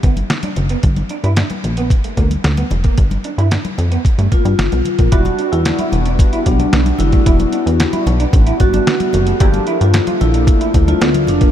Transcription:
0.03 analog synth bass G1, clean electric guitar B3, kick, closed hi-hat, muted conga
0.17 closed hi-hat, high conga
0.30 snare, closed hi-hat
0.43 clean electric guitar D4, closed hi-hat, high conga
0.56 analog synth bass F#1, muted clean electric guitar stroke, closed hi-hat, high conga, low conga
0.69 clean electric guitar B3, closed hi-hat
0.83 analog synth bass G1, kick, closed hi-hat, muted conga
0.96 muted clean electric guitar stroke, closed hi-hat, high conga
1.09 clean electric guitar D4, closed hi-hat, muted conga
1.24 analog synth bass G2, clean electric guitar E4, closed hi-hat
1.37 clean electric guitar D4, snare, closed hi-hat, muted conga
1.50 muted clean electric guitar stroke, closed hi-hat, high conga
1.64 analog synth bass A#1, closed hi-hat, low conga
1.77 clean electric guitar B3, closed hi-hat
1.90 muted clean electric guitar stroke, kick, closed hi-hat, muted conga
2.04 clean electric guitar A3, closed hi-hat
2.17 analog synth bass D2, clean electric guitar A#3, kick, closed hi-hat, muted conga
2.31 closed hi-hat, high conga
2.44 analog synth bass D2, snare, closed hi-hat, muted conga
2.57 clean electric guitar B3, closed hi-hat, high conga
2.71 analog synth bass F1, muted clean electric guitar stroke, closed hi-hat, muted conga, high conga, low conga
2.84 clean electric guitar A#3, kick, closed hi-hat
2.98 analog synth bass G1, kick, closed hi-hat
3.11 muted clean electric guitar stroke, closed hi-hat, high conga
3.24 clean electric guitar D4, closed hi-hat
3.38 analog synth bass G2, clean electric guitar E4, closed hi-hat
3.51 clean electric guitar D4, snare, closed hi-hat
3.65 muted clean electric guitar stroke, closed hi-hat, high conga
3.78 analog synth bass F2, closed hi-hat, muted conga, low conga
3.92 clean electric guitar B3, closed hi-hat
4.05 muted clean electric guitar stroke, kick, closed hi-hat
4.18 analog synth bass G2, clean electric guitar A3, closed hi-hat
4.32 clean electric guitar A#3, vibraphone F4, kick, closed hi-hat, muted conga
4.45 analog synth bass G2, closed hi-hat, high conga
4.59 analog synth bass G1, snare, closed hi-hat, muted conga
4.72 analog synth bass B1, clean electric guitar B3, closed hi-hat, high conga
4.85 muted clean electric guitar stroke, closed hi-hat, muted conga, high conga, low conga
4.99 analog synth bass A#1, clean electric guitar A#3, kick, closed hi-hat
5.11 analog synth bass E1, analog polysynth G3 B3 D4 F#4, clean electric guitar E4, vibraphone F#4, kick, closed hi-hat
5.25 muted clean electric guitar stroke, closed hi-hat, high conga
5.39 clean electric guitar D4, closed hi-hat
5.52 analog synth bass E2, vibraphone E4, closed hi-hat
5.65 snare, closed hi-hat, muted conga
5.79 clean electric guitar E4, closed hi-hat, high conga
5.92 analog synth bass E1, vibraphone B3, muted clean electric guitar stroke, closed hi-hat, low conga
6.06 clean electric guitar D4, closed hi-hat
6.19 kick, closed hi-hat, muted conga
6.33 clean electric guitar E4, closed hi-hat
6.46 analog synth bass B1, vibraphone D4, muted clean electric guitar stroke, kick, closed hi-hat
6.60 clean electric guitar D4, closed hi-hat, high conga
6.73 analog synth bass B1, clean electric guitar B3, snare, closed hi-hat, muted conga
6.86 closed hi-hat, high conga
6.98 analog synth bass F#1, vibraphone E4, muted clean electric guitar stroke, closed hi-hat, muted conga, low conga
7.12 clean electric guitar A3, kick, closed hi-hat
7.26 analog synth bass E1, clean electric guitar E4, kick, closed hi-hat
7.39 muted clean electric guitar stroke, closed hi-hat, high conga
7.53 clean electric guitar D4, closed hi-hat, muted conga
7.66 analog synth bass E2, closed hi-hat
7.80 snare, closed hi-hat
7.93 clean electric guitar E4, closed hi-hat, high conga
8.07 analog synth bass B1, muted clean electric guitar stroke, closed hi-hat, muted conga, low conga
8.20 clean electric guitar D4, closed hi-hat
8.33 analog synth bass A1, kick, closed hi-hat, muted conga
8.47 clean electric guitar E4, closed hi-hat
8.60 analog synth bass G1, vibraphone F#4, muted clean electric guitar stroke, kick, closed hi-hat, muted conga
8.73 clean electric guitar D4, closed hi-hat, high conga
8.87 clean electric guitar B3, snare, closed hi-hat
9.00 closed hi-hat, high conga
9.13 analog synth bass F#1, muted clean electric guitar stroke, closed hi-hat, muted conga, low conga
9.27 clean electric guitar A3, closed hi-hat
9.40 analog synth bass G1, analog polysynth A3 A#3 D4 E4, vibraphone G4, clean electric guitar G4, kick, closed hi-hat, muted conga
9.48 analog polysynth F3
9.54 muted clean electric guitar stroke, closed hi-hat, high conga
9.67 clean electric guitar E4, closed hi-hat
9.81 analog synth bass G2, vibraphone F4, closed hi-hat
9.94 snare, closed hi-hat, muted conga
10.07 clean electric guitar F4, closed hi-hat, high conga
10.21 analog synth bass A#1, vibraphone E4, muted clean electric guitar stroke, closed hi-hat, muted conga, low conga
10.34 clean electric guitar D4, closed hi-hat
10.47 kick, closed hi-hat, muted conga
10.61 clean electric guitar E4, closed hi-hat
10.74 analog synth bass D2, muted clean electric guitar stroke, kick, closed hi-hat, muted conga
10.88 clean electric guitar D4, vibraphone F4, closed hi-hat, high conga
11.01 analog synth bass D2, clean electric guitar B3, snare, closed hi-hat, muted conga
11.14 closed hi-hat, high conga
11.27 analog synth bass F1, vibraphone D4, muted clean electric guitar stroke, closed hi-hat, muted conga, low conga
11.41 clean electric guitar A#3, kick, closed hi-hat

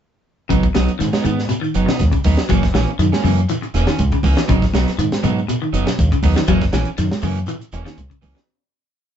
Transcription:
0.49 fingered electric bass G#1, clean electric guitar C#3 F#3 B3 D#4, kick, closed hi-hat, high conga, shekere
0.63 kick, shekere
0.74 fingered electric bass B1, clean electric guitar B2 F#3 B3 D#4, snare, closed hi-hat, high conga, shekere
0.88 muted fingered electric bass stroke, closed hi-hat, shekere
0.99 fingered electric bass G#2, clean electric guitar D#3, snare, closed hi-hat, high conga, shekere
1.13 clean electric guitar B3 D#4, snare, closed hi-hat, high conga, shekere
1.24 fingered electric bass G#2, clean electric guitar D#3 B3, muted clean electric guitar stroke, closed hi-hat, low conga, shekere
1.39 snare, shekere
1.49 clean electric guitar B2, closed hi-hat, high conga, shekere
1.61 clean electric guitar D#3, shekere
1.74 fingered electric bass F#1, clean electric guitar F#3 B3 D#4, closed hi-hat, shekere
1.86 clean electric guitar B2 B3 D#4, snare, closed hi-hat, low conga, shekere
1.99 fingered electric bass D#2, kick, snare, closed hi-hat, high conga, shekere
2.12 clean electric guitar C#3, kick, closed hi-hat
2.16 shekere
2.24 fingered electric bass D#2, clean electric guitar F#3 B3 D#4, kick, open hi-hat, high conga, low conga, shekere
2.37 snare, closed hi-hat, shekere
2.49 fingered electric bass F#1, clean electric guitar E3 F#3 A#3 C#4, kick, closed hi-hat, shekere
2.63 kick, snare, closed hi-hat, shekere
2.74 fingered electric bass A#1, clean electric guitar E3 A#3 C#4, snare, closed hi-hat, high conga, shekere
2.88 closed hi-hat, shekere
2.99 fingered electric bass F#2, clean electric guitar D#3, closed hi-hat, high conga, shekere
3.12 clean electric guitar A#3 C#4, snare, high conga, shekere
3.24 fingered electric bass F#2, clean electric guitar C#3 E3 A#3 C#4, open hi-hat, high conga, low conga, shekere
3.38 closed hi-hat, shekere
3.49 clean electric guitar E3, closed hi-hat, high conga, shekere
3.62 muted clean electric guitar stroke, closed hi-hat, shekere
3.74 fingered electric bass E1, clean electric guitar E3 A#3 C#4, snare, closed hi-hat, shekere
3.87 clean electric guitar D#3 C#4, snare, closed hi-hat, shekere
3.99 fingered electric bass C#2, kick, closed hi-hat, high conga, shekere
4.12 clean electric guitar C#3, kick, closed hi-hat, shekere
4.23 fingered electric bass C#2, clean electric guitar E3 A#3 C#4, kick, open hi-hat, high conga, low conga, shekere
4.37 clean electric guitar E3, snare, closed hi-hat
4.48 fingered electric bass G#1, clean electric guitar C#3 F#3 D#4, muted clean electric guitar stroke, kick, closed hi-hat, high conga, shekere
4.62 kick, snare, shekere
4.73 fingered electric bass B1, clean electric guitar B2 F#3 B3 D#4, snare, closed hi-hat, high conga, shekere
4.88 snare, closed hi-hat, shekere
4.98 fingered electric bass G#2, clean electric guitar D#3, closed hi-hat, shekere
5.12 snare, closed hi-hat, high conga, shekere
5.23 fingered electric bass G#2, clean electric guitar B2 F#3 B3 D#4, closed hi-hat, low conga, shekere
5.38 shekere
5.48 clean electric guitar B2, closed hi-hat, high conga, shekere
5.62 clean electric guitar D#3, shekere
5.73 fingered electric bass F#1, clean electric guitar F#3 B3 D#4, closed hi-hat, shekere
5.87 clean electric guitar B2, snare, closed hi-hat, shekere
5.98 fingered electric bass D#2, kick, closed hi-hat, high conga, shekere
6.12 clean electric guitar C#3, kick, closed hi-hat, shekere
6.23 fingered electric bass D#2, clean electric guitar F#3 B3 D#4, kick, open hi-hat, high conga, low conga, shekere
6.36 clean electric guitar D#3, snare, closed hi-hat, shekere
6.48 fingered electric bass F#1, clean electric guitar E3 F#3 A#3 C#4, kick, closed hi-hat, shekere
6.61 kick, snare, closed hi-hat, shekere
6.72 fingered electric bass A#1, clean electric guitar E3 C#4, muted clean electric guitar stroke, snare, closed hi-hat, high conga, shekere
6.85 muted fingered electric bass stroke, closed hi-hat, shekere
6.98 fingered electric bass F#2, clean electric guitar D#3, snare, closed hi-hat, high conga, shekere
7.11 snare, high conga, shekere
7.22 fingered electric bass F#2, clean electric guitar C#3 E3 A#3 C#4, open hi-hat, low conga, shekere
7.35 closed hi-hat, shekere
7.46 clean electric guitar E3, closed hi-hat, high conga, shekere
7.61 closed hi-hat, shekere
7.72 fingered electric bass E1, clean electric guitar E3 A#3 C#4, closed hi-hat, shekere
7.84 clean electric guitar D#3 A#3 C#4, snare, closed hi-hat, shekere
7.98 fingered electric bass C#2, kick, closed hi-hat, high conga, shekere
8.10 clean electric guitar C#3, kick, closed hi-hat, shekere
8.22 fingered electric bass C#2, clean electric guitar E3 A#3 C#4, kick, open hi-hat, high conga, low conga, shekere
8.35 clean electric guitar E3, snare, shekere

